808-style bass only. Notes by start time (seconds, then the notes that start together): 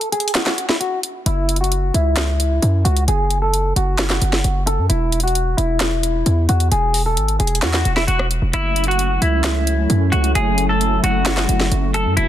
1.26 F#1
1.94 C#2
2.62 F#2
2.85 C#2
3.08 F#1
3.76 F#1
4.22 F#1
4.44 F#1
4.78 F#2
4.90 E1
5.58 E1
6.26 E2
6.49 E2
6.72 E1
7.17 G#1
7.40 E1
7.62 E2
7.85 E1
8.08 E1
8.42 E1
8.53 F#1
9.22 C#2
9.90 F#2
10.12 C#2
10.35 F#1
11.03 F#1
11.49 F#1
11.71 F#1
12.06 F#2
12.17 E1